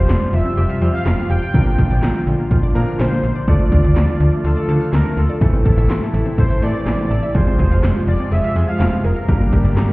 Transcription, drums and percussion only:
0.09 snare loud
0.09 clap loud
0.09 closed hi-hat medium
0.33 closed hi-hat medium
0.58 closed hi-hat medium
0.82 closed hi-hat medium
1.06 snare loud
1.06 clap loud
1.06 closed hi-hat medium
1.30 open hi-hat medium
1.54 kick loud
1.54 closed hi-hat medium
1.78 kick medium
1.78 closed hi-hat medium
2.03 snare loud
2.03 clap loud
2.03 closed hi-hat medium
2.27 closed hi-hat medium
2.51 kick loud
2.51 closed hi-hat medium
2.75 closed hi-hat medium
2.99 snare loud
2.99 clap loud
2.99 closed hi-hat medium
3.24 open hi-hat medium
3.48 kick loud
3.48 closed hi-hat medium
3.72 kick medium
3.72 closed hi-hat medium
3.96 snare loud
3.96 clap loud
3.96 closed hi-hat medium
4.20 closed hi-hat medium
4.45 closed hi-hat medium
4.69 closed hi-hat medium
4.93 snare loud
4.93 clap loud
4.93 closed hi-hat medium
5.17 open hi-hat medium
5.41 kick loud
5.41 closed hi-hat medium
5.66 kick medium
5.66 closed hi-hat medium
5.90 snare loud
5.90 clap loud
5.90 closed hi-hat medium
6.14 closed hi-hat medium
6.38 kick loud
6.38 closed hi-hat medium
6.63 closed hi-hat medium
6.86 snare loud
6.86 clap loud
6.86 closed hi-hat medium
7.11 open hi-hat medium
7.35 kick loud
7.35 closed hi-hat medium
7.59 kick medium
7.59 closed hi-hat medium
7.83 snare loud
7.83 clap loud
7.83 closed hi-hat medium
8.08 closed hi-hat medium
8.32 closed hi-hat medium
8.56 closed hi-hat medium
8.80 snare loud
8.80 clap loud
8.80 closed hi-hat medium
9.04 open hi-hat medium
9.29 kick loud
9.29 closed hi-hat medium
9.53 kick medium
9.53 closed hi-hat medium
9.77 snare loud
9.77 clap loud
9.77 closed hi-hat medium

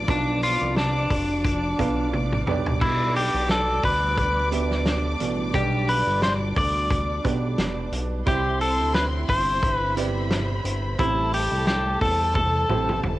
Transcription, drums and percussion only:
0.08 kick loud
0.08 hi-hat pedal medium
0.08 open hi-hat medium
0.42 hi-hat pedal medium
0.42 open hi-hat medium
0.76 snare loud
0.76 hi-hat pedal medium
0.76 open hi-hat medium
1.11 kick medium
1.11 hi-hat pedal medium
1.11 open hi-hat medium
1.45 kick medium
1.45 hi-hat pedal medium
1.45 open hi-hat loud
1.79 kick medium
1.79 hi-hat pedal medium
1.79 open hi-hat medium
2.13 high tom medium
2.32 mid tom medium
2.47 mid tom medium
2.66 floor tom medium
2.81 kick loud
2.81 crash medium
3.16 hi-hat pedal medium
3.16 open hi-hat medium
3.49 snare loud
3.49 hi-hat pedal medium
3.49 open hi-hat medium
3.84 kick medium
3.84 hi-hat pedal medium
3.84 open hi-hat medium
4.18 kick medium
4.18 hi-hat pedal medium
4.18 open hi-hat loud
4.52 hi-hat pedal medium
4.52 open hi-hat medium
4.71 snare soft
4.86 snare loud
4.86 hi-hat pedal medium
4.86 open hi-hat medium
5.20 hi-hat pedal medium
5.20 open hi-hat medium
5.54 kick loud
5.54 hi-hat pedal medium
5.54 open hi-hat medium
5.88 hi-hat pedal medium
5.88 open hi-hat medium
6.22 snare loud
6.22 hi-hat pedal medium
6.22 open hi-hat medium
6.56 kick medium
6.56 hi-hat pedal medium
6.56 open hi-hat medium
6.90 kick medium
6.90 hi-hat pedal medium
6.90 open hi-hat loud
7.24 kick medium
7.24 hi-hat pedal medium
7.24 open hi-hat medium
7.58 snare loud
7.58 hi-hat pedal medium
7.58 open hi-hat medium
7.92 hi-hat pedal medium
7.92 open hi-hat medium
8.26 kick loud
8.26 hi-hat pedal medium
8.26 open hi-hat medium
8.60 hi-hat pedal medium
8.60 open hi-hat medium
8.94 snare loud
8.94 hi-hat pedal medium
8.94 open hi-hat medium
9.29 kick medium
9.29 hi-hat pedal medium
9.29 open hi-hat medium
9.63 kick loud
9.63 hi-hat pedal medium
9.63 open hi-hat loud
9.97 hi-hat pedal medium
9.97 open hi-hat medium
10.31 snare loud
10.31 hi-hat pedal medium
10.31 open hi-hat medium
10.65 hi-hat pedal medium
10.65 open hi-hat medium
10.99 kick loud
10.99 hi-hat pedal medium
10.99 open hi-hat medium
11.33 hi-hat pedal medium
11.33 open hi-hat medium
11.67 snare loud
11.67 hi-hat pedal medium
11.67 open hi-hat medium
12.01 kick medium
12.01 hi-hat pedal medium
12.01 open hi-hat medium
12.35 kick medium
12.35 high tom medium
12.70 mid tom medium
12.89 mid tom medium
13.03 mid tom medium

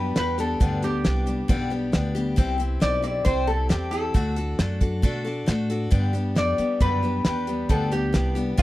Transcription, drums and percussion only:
0.16 snare loud
0.16 closed hi-hat medium
0.39 closed hi-hat medium
0.61 kick loud
0.61 closed hi-hat medium
0.83 closed hi-hat medium
1.05 snare loud
1.05 closed hi-hat medium
1.27 closed hi-hat medium
1.49 kick loud
1.49 closed hi-hat medium
1.93 snare loud
1.93 closed hi-hat medium
2.16 closed hi-hat medium
2.38 kick loud
2.38 closed hi-hat medium
2.60 closed hi-hat medium
2.82 snare loud
2.82 closed hi-hat medium
3.04 closed hi-hat medium
3.26 kick medium
3.26 closed hi-hat medium
3.70 snare loud
3.70 closed hi-hat medium
3.93 closed hi-hat medium
4.14 kick loud
4.14 closed hi-hat medium
4.36 closed hi-hat medium
4.59 snare loud
4.59 closed hi-hat medium
4.81 kick medium
4.81 closed hi-hat medium
5.03 kick medium
5.03 closed hi-hat medium
5.48 snare loud
5.48 closed hi-hat medium
5.70 closed hi-hat medium
5.92 kick loud
5.92 closed hi-hat medium
6.15 closed hi-hat medium
6.36 snare loud
6.36 closed hi-hat medium
6.58 closed hi-hat medium
6.80 kick loud
6.80 closed hi-hat medium
7.25 snare loud
7.25 closed hi-hat medium
7.47 closed hi-hat medium
7.69 kick loud
7.69 closed hi-hat medium
7.92 closed hi-hat medium
8.14 snare loud
8.14 closed hi-hat medium
8.36 closed hi-hat medium
8.58 kick loud
8.58 closed hi-hat medium

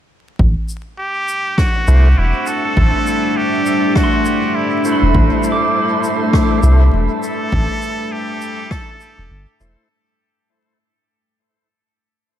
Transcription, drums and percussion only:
0.39 kick medium
0.69 shaker medium
1.28 shaker medium
1.58 kick medium
1.58 cross-stick medium
1.88 shaker medium
2.46 shaker medium
2.77 kick loud
3.07 shaker medium
3.66 shaker medium
3.95 kick loud
3.95 cross-stick medium
4.25 shaker medium
4.85 shaker medium
5.15 kick medium
5.43 shaker medium
6.04 shaker medium
6.33 kick loud
6.33 cross-stick medium
6.63 shaker medium
7.23 shaker medium
7.52 kick loud
7.82 shaker medium
8.41 shaker medium
8.71 kick loud
8.71 cross-stick loud
9.00 shaker medium
9.60 shaker medium

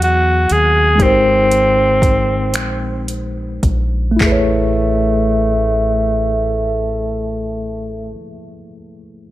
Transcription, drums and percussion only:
0.02 closed hi-hat soft
0.50 closed hi-hat soft
0.99 kick medium
0.99 closed hi-hat medium
1.51 closed hi-hat soft
2.02 kick medium
2.02 closed hi-hat soft
2.54 finger snap medium
2.54 closed hi-hat medium
3.08 closed hi-hat soft
3.63 kick medium
3.63 closed hi-hat soft
4.21 kick medium
4.21 clap medium
4.21 floor tom medium

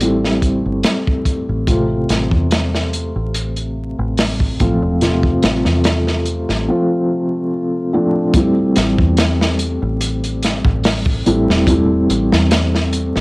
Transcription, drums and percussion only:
0.01 closed hi-hat medium
0.24 snare soft
0.42 kick medium
0.42 closed hi-hat medium
0.83 snare loud
0.83 closed hi-hat medium
1.07 kick medium
1.25 kick medium
1.25 closed hi-hat medium
1.67 kick loud
1.67 closed hi-hat medium
2.09 snare soft
2.09 closed hi-hat medium
2.32 kick medium
2.51 snare loud
2.51 closed hi-hat medium
2.75 snare soft
2.93 closed hi-hat medium
3.34 closed hi-hat medium
3.56 closed hi-hat soft
4.17 snare loud
4.17 open hi-hat medium
4.40 kick medium
4.60 kick medium
4.60 closed hi-hat medium
5.01 snare soft
5.01 closed hi-hat medium
5.23 kick medium
5.42 snare loud
5.42 closed hi-hat medium
5.65 snare soft
5.84 snare loud
5.84 closed hi-hat medium
6.07 snare soft
6.25 closed hi-hat medium
6.49 snare soft
8.34 kick loud
8.34 closed hi-hat medium
8.76 snare soft
8.76 closed hi-hat medium
8.98 kick loud
9.17 snare loud
9.17 closed hi-hat medium
9.41 snare medium
9.59 closed hi-hat medium
10.01 closed hi-hat medium
10.24 closed hi-hat soft
10.43 snare soft
10.43 closed hi-hat medium
10.65 kick medium
10.84 snare loud
10.84 open hi-hat medium
11.06 kick medium
11.26 closed hi-hat medium
11.50 snare soft
11.67 kick loud
11.67 closed hi-hat medium
12.10 closed hi-hat medium
12.32 snare medium
12.51 snare loud
12.51 closed hi-hat medium
12.75 snare soft
12.93 closed hi-hat medium
13.16 snare soft

